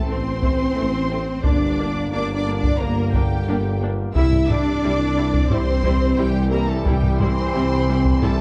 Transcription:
Already playing: trombone section E3 C4
0.08 double bass section A1, tuba A1, viola section A3 C4, french horn section C4, cello section C4, violin section C5 C6
0.42 viola section A3 C4, taiko
0.76 double bass section A1, tuba A1, viola section A3 C4
1.11 viola section A3 C4
1.43 double bass section G1, tuba G1, trombone section D3 A#3, viola section A#3 D4, cello section D4, french horn section D4, violin section D5 D6, taiko
1.78 viola section A#3 D4
2.12 double bass section G1, tuba G1, viola section A#3 D4, cello section D4, french horn section D4, violin section D5 D6
2.34 cello section D4, french horn section D4, violin section D5 D6
2.47 viola section A#3 D4
2.56 cello section D4, french horn section D4, violin section D5 D6
2.63 taiko
2.78 double bass section G1, tuba G1, french horn section A#3, cello section A#3, viola section A#3 D4, violin section A#4 A#5
3.13 french horn section G3, cello section G3, viola section A#3 D4, violin section G4 G5, taiko
3.47 double bass section G1, tuba G1, viola section A#3 D4
3.81 viola section A#3 D4
4.14 double bass section C2, tuba C2, trombone section E3 G3, viola section G3 E4, french horn section E4, cello section E4, violin section E5 E6, taiko
4.32 taiko low-mid
4.49 viola section G3 E4, cello section D4, french horn section D4, violin section D5 D6, taiko low-mid
4.83 double bass section C2, tuba C2, viola section G3 E4
5.17 viola section G3 E4
5.33 taiko
5.50 double bass section C2, tuba C2, viola section G3 E4, cello section C4, french horn section C4, violin section C5 C6, taiko low-mid
5.83 viola section G3 E4, taiko
6.17 double bass section C2, tuba C2, french horn section G3, viola section G3 E4, cello section G3, violin section G4 G5
6.50 viola section G3 E4, french horn section A#3, cello section A#3, violin section A#4 A#5
6.68 french horn section A3, cello section A3, violin section A4 A5
6.85 double bass section C2, tuba C2, french horn section G3, cello section G3, viola section G3 E4, violin section G4 G5, taiko
7.03 taiko low-mid
7.18 viola section G3 E4, french horn section C4, cello section C4, violin section C5 C6, taiko low-mid
7.55 double bass section C2, tuba C2, viola section G3 E4
7.88 viola section G3 E4
8.05 taiko
8.21 double bass section C2, tuba C2, viola section G3 E4, french horn section A3, cello section A3, violin section A4 A5, taiko low-mid

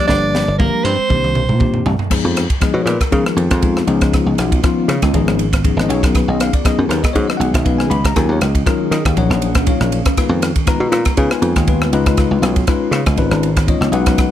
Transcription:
Already playing: tine electric piano F3 G3 A#3 D4 G4
0.07 slap bass G1, hollow-body jazz guitar D4, soprano saxophone D5, kick, snare
0.35 snare
0.48 slap bass G1
0.58 tine electric piano F3 G3 A#3 D4 G4, hollow-body jazz guitar A#3, soprano saxophone A#4, kick, high tom
0.84 slap bass G2, hollow-body jazz guitar C4, soprano saxophone C5, high tom
0.99 muted slap bass stroke
1.09 slap bass C2, tine electric piano D#3 A#3 C4 D4 G4, kick, mid tom
1.24 mid tom
1.35 mid tom
1.49 slap bass A#2, mid tom
1.58 tine electric piano D#3 A#3 C4 D4 G4, kick, mid tom
1.74 floor tom
1.86 slap bass C2, floor tom
1.99 muted slap bass stroke, floor tom
2.10 ambient pad D#3 G#3 B3 F4, tine electric piano F3 G#3 B3 D#4 G#4, muted slap bass stroke, kick, cross-stick, crash
2.25 slap bass F2
2.37 cross-stick, ride
2.50 kick, ride
2.61 tine electric piano F3 G#3 B3 D#4 G#4 D#5, kick, cross-stick, ride
2.74 slap bass B2, tine electric piano C#5
2.85 slap bass A#2, tine electric piano B4, cross-stick, ride
3.00 tine electric piano A#4, muted slap bass stroke, kick, cross-stick, ride
3.11 slap bass C#3, tine electric piano F3 G#3 B3 D#4 G#4 A#4, kick, ride
3.26 cross-stick
3.36 slap bass F2, ride
3.51 slap bass F2, kick, cross-stick, ride
3.62 tine electric piano F3 G#3 B3 D#4 F4, kick, ride
3.77 cross-stick
3.87 slap bass C#2, ambient pad D#3 C#4, tine electric piano F3 B3 C#4 D#4 G#4, ride
4.01 kick, cross-stick, ride
4.13 kick, cross-stick, ride
4.26 slap bass C#2
4.38 slap bass B1, cross-stick, ride
4.52 kick, ride
4.63 tine electric piano F3 B3 C#4 D#4 F4, kick, cross-stick, ride
4.88 slap bass C#3, cross-stick, ride
5.02 slap bass C#2, kick, cross-stick, ride
5.13 slap bass G#1, tine electric piano F3 B3 C#4 D#4 G#4, kick, ride
5.28 slap bass G#1, cross-stick
5.39 ride
5.53 kick, cross-stick, ride
5.64 tine electric piano F3 B3 C#4 D#4 G#4, kick, ride
5.77 slap bass G#1, tine electric piano D#5, cross-stick
5.88 slap bass B1, tine electric piano F#3 B3 C#4 D#4 G#4 C#5, ambient pad G#3 B3 G#4, ride
6.03 tine electric piano A#4, kick, cross-stick, ride
6.15 tine electric piano B4, kick, cross-stick, ride
6.28 slap bass B1, tine electric piano D#5
6.40 tine electric piano F5, cross-stick, ride
6.53 tine electric piano D5, kick, ride
6.65 tine electric piano F#3 B3 C#4 D#4 G#4 D#5, kick, cross-stick, ride
6.78 slap bass F#2, tine electric piano F#4
6.89 slap bass D#2, tine electric piano B4, cross-stick, ride
7.03 tine electric piano D#5, kick, cross-stick, ride
7.13 slap bass G#2, tine electric piano F#3 B3 C#4 D#4 F#4 C#5, kick, ride
7.28 tine electric piano D#5, cross-stick
7.37 slap bass B1, tine electric piano F#5, ride
7.54 slap bass B1, tine electric piano E5, kick, cross-stick, ride
7.64 tine electric piano F#3 B3 C#4 D#4 B4 F5, kick, ride
7.78 tine electric piano G#5, cross-stick
7.90 slap bass C#2, tine electric piano B5, ride
8.05 tine electric piano A#5, kick, cross-stick, ride
8.15 slap bass D#2, tine electric piano F#3 C#4 D#4 F4 A#4 G#5, ambient pad A#3 C#4, kick, cross-stick, ride
8.29 slap bass D#2, tine electric piano C#5
8.41 slap bass C#2, cross-stick, ride
8.55 kick, ride
8.66 tine electric piano F#3 C#4 D#4 F4 A#4, kick, cross-stick, ride
8.91 slap bass D#3, cross-stick, ride
9.05 slap bass D#2, kick, cross-stick, ride
9.17 slap bass A#1, tine electric piano F3 F#3 C#4 D#4 C#5 F#5, kick, ride
9.30 slap bass A#1, cross-stick
9.42 ride
9.55 kick, cross-stick, ride
9.66 tine electric piano F#3 C#4 D#4 F4 C#5 F5, kick, ride
9.80 slap bass A#1, cross-stick
9.92 ride
10.05 kick, cross-stick, ride
10.17 tine electric piano G#3 B3 D#4 F4 B4, ambient pad G#3 B3 F4, muted slap bass stroke, kick, cross-stick, ride
10.29 slap bass F2
10.42 cross-stick, ride
10.55 kick, ride
10.66 tine electric piano G#3 B3 D#4 F4 B4 A#5, kick, cross-stick, ride
10.80 slap bass B2
10.92 slap bass A#2, cross-stick, ride
11.05 muted slap bass stroke, kick, cross-stick, ride
11.17 slap bass C#3, tine electric piano G#3 B3 D#4 F4 B4 G#5, kick, ride
11.31 cross-stick
11.42 slap bass F2, ride
11.56 slap bass D#2, kick, cross-stick, ride
11.67 tine electric piano G#3 B3 D#4 F4 B4, kick, ride
11.82 cross-stick
11.92 slap bass C#2, tine electric piano G#3 C#4 D#4 F4 B4, ambient pad B3 C#4, ride
12.06 kick, cross-stick, ride
12.17 kick, cross-stick, ride
12.31 slap bass C#2
12.42 slap bass B1, cross-stick, ride
12.56 kick, ride
12.67 tine electric piano G#3 C#4 D#4 F4 B4, kick, cross-stick, ride
12.91 slap bass C#3, cross-stick, ride
13.06 slap bass C#2, kick, cross-stick, ride
13.17 slap bass G#1, tine electric piano G#3 C#4 D#4 F4 B4, kick, ride
13.31 slap bass G#1, cross-stick
13.43 ride
13.56 kick, cross-stick, ride
13.67 tine electric piano G#3 C#4 D#4 F4 C#5 D#5, kick, ride
13.81 slap bass C#2, cross-stick
13.92 slap bass B1, tine electric piano G#3 C#4 D#4 F#4 B4 F#5, ride
14.06 kick, cross-stick, ride
14.18 kick, cross-stick, ride

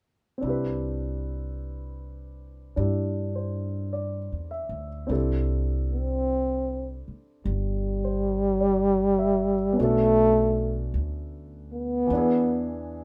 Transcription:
0.38 grand piano C4 D4
0.42 upright bass C2, grand piano E4
0.47 grand piano G4 B4
2.76 upright bass G2, grand piano D4 E4 G4
3.36 grand piano C5
3.93 grand piano D5
4.32 upright bass E2
4.51 grand piano E5
4.69 upright bass D2
5.07 upright bass C2, grand piano C4 D4 E4
5.11 grand piano G4 A4
5.92 trombone C4
7.08 muted upright bass stroke
7.45 upright bass G1, trombone G3
8.05 grand piano C5
8.60 grand piano D5
9.19 grand piano E5
9.73 grand piano B3 C#4
9.79 upright bass B1, trombone A3, grand piano D4 F#4
9.84 grand piano A4
10.94 upright bass D2
11.73 trombone B3
12.07 upright bass E2, grand piano E3 B3
12.13 grand piano D4 E4
12.17 grand piano G#4

